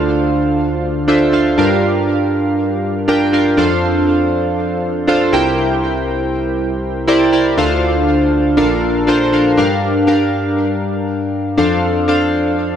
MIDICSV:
0, 0, Header, 1, 2, 480
1, 0, Start_track
1, 0, Tempo, 500000
1, 1517, Time_signature, 4, 2, 24, 8
1, 12252, End_track
2, 0, Start_track
2, 0, Title_t, "Synth keys"
2, 0, Program_c, 0, 88
2, 0, Control_c, 0, 64, 127
2, 0, Note_on_c, 0, 38, 80
2, 0, Note_on_c, 0, 50, 81
2, 0, Note_on_c, 0, 62, 92
2, 0, Note_on_c, 0, 65, 80
2, 0, Note_on_c, 0, 69, 84
2, 0, Note_on_c, 0, 72, 82
2, 0, Note_on_c, 0, 77, 103
2, 413, Note_off_c, 0, 62, 0
2, 413, Note_off_c, 0, 65, 0
2, 415, Note_off_c, 0, 69, 0
2, 416, Note_off_c, 0, 72, 0
2, 418, Note_off_c, 0, 77, 0
2, 1033, Note_on_c, 0, 62, 83
2, 1035, Note_on_c, 0, 65, 76
2, 1038, Note_on_c, 0, 69, 77
2, 1042, Note_on_c, 0, 72, 80
2, 1044, Note_on_c, 0, 76, 91
2, 1241, Note_off_c, 0, 62, 0
2, 1242, Note_off_c, 0, 65, 0
2, 1243, Note_off_c, 0, 69, 0
2, 1245, Note_off_c, 0, 72, 0
2, 1246, Note_off_c, 0, 76, 0
2, 1271, Note_on_c, 0, 62, 78
2, 1274, Note_on_c, 0, 65, 67
2, 1277, Note_on_c, 0, 69, 66
2, 1278, Note_on_c, 0, 72, 70
2, 1282, Note_on_c, 0, 77, 85
2, 1479, Note_off_c, 0, 50, 0
2, 1480, Note_off_c, 0, 38, 0
2, 1480, Note_off_c, 0, 62, 0
2, 1481, Note_off_c, 0, 65, 0
2, 1483, Note_off_c, 0, 69, 0
2, 1483, Note_off_c, 0, 72, 0
2, 1486, Note_off_c, 0, 77, 0
2, 1514, Note_on_c, 0, 62, 94
2, 1517, Note_on_c, 0, 65, 80
2, 1519, Note_on_c, 0, 43, 77
2, 1520, Note_on_c, 0, 67, 84
2, 1522, Note_on_c, 0, 70, 79
2, 1526, Note_on_c, 0, 77, 98
2, 1529, Control_c, 0, 64, 0
2, 1721, Control_c, 0, 64, 127
2, 2332, Note_off_c, 0, 62, 0
2, 2334, Note_off_c, 0, 65, 0
2, 2335, Note_off_c, 0, 67, 0
2, 2336, Note_off_c, 0, 70, 0
2, 2338, Note_off_c, 0, 77, 0
2, 2954, Note_on_c, 0, 62, 88
2, 2956, Note_on_c, 0, 65, 74
2, 2958, Note_on_c, 0, 67, 78
2, 2963, Note_on_c, 0, 70, 82
2, 2963, Note_on_c, 0, 79, 91
2, 3162, Note_off_c, 0, 62, 0
2, 3162, Note_off_c, 0, 65, 0
2, 3163, Note_off_c, 0, 67, 0
2, 3166, Note_off_c, 0, 70, 0
2, 3166, Note_off_c, 0, 79, 0
2, 3192, Note_on_c, 0, 62, 76
2, 3194, Note_on_c, 0, 65, 71
2, 3199, Note_on_c, 0, 67, 69
2, 3202, Note_on_c, 0, 70, 75
2, 3203, Note_on_c, 0, 77, 81
2, 3400, Note_off_c, 0, 43, 0
2, 3400, Note_off_c, 0, 62, 0
2, 3401, Note_off_c, 0, 65, 0
2, 3404, Note_off_c, 0, 67, 0
2, 3406, Note_off_c, 0, 70, 0
2, 3406, Note_off_c, 0, 77, 0
2, 3430, Note_on_c, 0, 62, 96
2, 3435, Note_on_c, 0, 65, 80
2, 3436, Note_on_c, 0, 41, 78
2, 3437, Note_on_c, 0, 69, 84
2, 3442, Note_on_c, 0, 72, 82
2, 3444, Note_on_c, 0, 77, 101
2, 3450, Control_c, 0, 64, 0
2, 3621, Control_c, 0, 64, 127
2, 4250, Note_off_c, 0, 62, 0
2, 4253, Note_off_c, 0, 65, 0
2, 4254, Note_off_c, 0, 69, 0
2, 4256, Note_off_c, 0, 72, 0
2, 4257, Note_off_c, 0, 77, 0
2, 4871, Note_on_c, 0, 62, 82
2, 4875, Note_on_c, 0, 65, 80
2, 4878, Note_on_c, 0, 69, 85
2, 4881, Note_on_c, 0, 72, 85
2, 4884, Note_on_c, 0, 77, 92
2, 5078, Note_off_c, 0, 41, 0
2, 5080, Note_off_c, 0, 62, 0
2, 5082, Note_off_c, 0, 65, 0
2, 5083, Note_off_c, 0, 69, 0
2, 5085, Note_off_c, 0, 72, 0
2, 5086, Note_off_c, 0, 77, 0
2, 5112, Note_on_c, 0, 64, 84
2, 5113, Note_on_c, 0, 67, 79
2, 5116, Note_on_c, 0, 36, 76
2, 5117, Note_on_c, 0, 70, 79
2, 5118, Note_on_c, 0, 48, 74
2, 5119, Note_on_c, 0, 72, 80
2, 5124, Note_on_c, 0, 79, 101
2, 5129, Control_c, 0, 64, 0
2, 5311, Control_c, 0, 64, 127
2, 5931, Note_off_c, 0, 64, 0
2, 5932, Note_off_c, 0, 67, 0
2, 5933, Note_off_c, 0, 70, 0
2, 5935, Note_off_c, 0, 72, 0
2, 5937, Note_off_c, 0, 79, 0
2, 6792, Note_on_c, 0, 64, 90
2, 6794, Note_on_c, 0, 67, 80
2, 6795, Note_on_c, 0, 70, 76
2, 6798, Note_on_c, 0, 72, 84
2, 6801, Note_on_c, 0, 74, 94
2, 6998, Note_off_c, 0, 36, 0
2, 6999, Note_off_c, 0, 48, 0
2, 7000, Note_off_c, 0, 64, 0
2, 7001, Note_off_c, 0, 67, 0
2, 7002, Note_off_c, 0, 70, 0
2, 7003, Note_off_c, 0, 72, 0
2, 7005, Note_off_c, 0, 74, 0
2, 7031, Note_on_c, 0, 64, 82
2, 7032, Note_on_c, 0, 67, 73
2, 7035, Note_on_c, 0, 70, 72
2, 7039, Note_on_c, 0, 72, 68
2, 7040, Note_on_c, 0, 74, 84
2, 7240, Note_off_c, 0, 64, 0
2, 7240, Note_off_c, 0, 67, 0
2, 7242, Note_off_c, 0, 70, 0
2, 7244, Note_off_c, 0, 72, 0
2, 7244, Note_off_c, 0, 74, 0
2, 7271, Note_on_c, 0, 62, 90
2, 7275, Note_on_c, 0, 65, 83
2, 7277, Note_on_c, 0, 38, 79
2, 7278, Note_on_c, 0, 50, 81
2, 7279, Note_on_c, 0, 69, 83
2, 7280, Note_on_c, 0, 72, 83
2, 7282, Note_on_c, 0, 77, 104
2, 7288, Control_c, 0, 64, 0
2, 7480, Control_c, 0, 64, 127
2, 8091, Note_off_c, 0, 62, 0
2, 8093, Note_off_c, 0, 65, 0
2, 8094, Note_off_c, 0, 69, 0
2, 8095, Note_off_c, 0, 72, 0
2, 8096, Note_off_c, 0, 77, 0
2, 8198, Note_off_c, 0, 38, 0
2, 8199, Note_off_c, 0, 50, 0
2, 8227, Note_on_c, 0, 62, 90
2, 8230, Note_on_c, 0, 65, 81
2, 8233, Note_on_c, 0, 34, 76
2, 8233, Note_on_c, 0, 46, 73
2, 8233, Note_on_c, 0, 69, 82
2, 8235, Note_on_c, 0, 70, 83
2, 8237, Note_on_c, 0, 77, 101
2, 8248, Control_c, 0, 64, 0
2, 8406, Control_c, 0, 64, 127
2, 8644, Note_off_c, 0, 62, 0
2, 8645, Note_off_c, 0, 65, 0
2, 8647, Note_off_c, 0, 69, 0
2, 8648, Note_off_c, 0, 70, 0
2, 8649, Note_off_c, 0, 77, 0
2, 8707, Note_on_c, 0, 62, 84
2, 8710, Note_on_c, 0, 65, 82
2, 8714, Note_on_c, 0, 69, 77
2, 8718, Note_on_c, 0, 70, 75
2, 8721, Note_on_c, 0, 72, 95
2, 8918, Note_off_c, 0, 62, 0
2, 8919, Note_off_c, 0, 65, 0
2, 8922, Note_off_c, 0, 69, 0
2, 8923, Note_off_c, 0, 70, 0
2, 8925, Note_off_c, 0, 72, 0
2, 8953, Note_on_c, 0, 62, 75
2, 8954, Note_on_c, 0, 65, 70
2, 8956, Note_on_c, 0, 69, 69
2, 8961, Note_on_c, 0, 70, 67
2, 8962, Note_on_c, 0, 77, 83
2, 9157, Note_off_c, 0, 34, 0
2, 9157, Note_off_c, 0, 46, 0
2, 9161, Note_off_c, 0, 62, 0
2, 9162, Note_off_c, 0, 65, 0
2, 9162, Note_off_c, 0, 69, 0
2, 9165, Note_off_c, 0, 70, 0
2, 9165, Note_off_c, 0, 77, 0
2, 9191, Note_on_c, 0, 62, 89
2, 9194, Note_on_c, 0, 67, 78
2, 9196, Note_on_c, 0, 43, 76
2, 9199, Note_on_c, 0, 70, 77
2, 9203, Note_on_c, 0, 77, 96
2, 9210, Control_c, 0, 64, 0
2, 9386, Control_c, 0, 64, 127
2, 9605, Note_off_c, 0, 62, 0
2, 9607, Note_off_c, 0, 67, 0
2, 9609, Note_off_c, 0, 70, 0
2, 9612, Note_off_c, 0, 77, 0
2, 9668, Note_on_c, 0, 62, 84
2, 9674, Note_on_c, 0, 67, 73
2, 9674, Note_on_c, 0, 70, 74
2, 9679, Note_on_c, 0, 77, 88
2, 10489, Note_off_c, 0, 62, 0
2, 10492, Note_off_c, 0, 67, 0
2, 10493, Note_off_c, 0, 70, 0
2, 10495, Note_off_c, 0, 77, 0
2, 11078, Note_off_c, 0, 43, 0
2, 11112, Note_on_c, 0, 62, 88
2, 11116, Note_on_c, 0, 69, 80
2, 11118, Note_on_c, 0, 72, 81
2, 11119, Note_on_c, 0, 41, 75
2, 11124, Note_on_c, 0, 77, 95
2, 11128, Control_c, 0, 64, 0
2, 11283, Control_c, 0, 64, 127
2, 11526, Note_off_c, 0, 62, 0
2, 11528, Note_off_c, 0, 69, 0
2, 11529, Note_off_c, 0, 72, 0
2, 11532, Note_off_c, 0, 77, 0
2, 11594, Note_on_c, 0, 62, 82
2, 11598, Note_on_c, 0, 69, 72
2, 11602, Note_on_c, 0, 72, 76
2, 11606, Note_on_c, 0, 77, 93
2, 12252, Note_off_c, 0, 41, 0
2, 12252, Note_off_c, 0, 62, 0
2, 12252, Note_off_c, 0, 69, 0
2, 12252, Note_off_c, 0, 72, 0
2, 12252, Note_off_c, 0, 77, 0
2, 12252, End_track
0, 0, End_of_file